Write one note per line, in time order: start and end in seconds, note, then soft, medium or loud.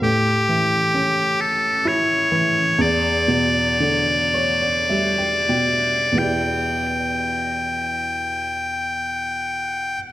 0.02 2.74 A2 soft
0.02 1.41 G4 medium
0.49 2.26 E3 soft
0.94 2.75 C#4 soft
1.41 1.88 A4 medium
1.85 2.76 E4 soft
1.85 2.82 C#5 medium
2.32 2.78 E3 soft
2.79 6.11 E2 medium
2.79 6.18 D5 medium
3.28 5.47 B2 soft
3.80 6.15 D3 soft
4.34 4.59 C#5 soft
4.61 4.88 D5 soft
4.90 6.15 G3 soft
4.90 5.18 E5 soft
5.18 5.48 G5 soft
5.49 6.12 B2 soft
5.49 6.13 G5 soft
6.12 9.94 E2 soft
6.12 9.95 B2 soft
6.12 9.97 B3 soft
6.18 9.99 E4 soft
6.18 10.03 G4 soft
6.18 10.00 G5 soft
6.23 10.04 D5 soft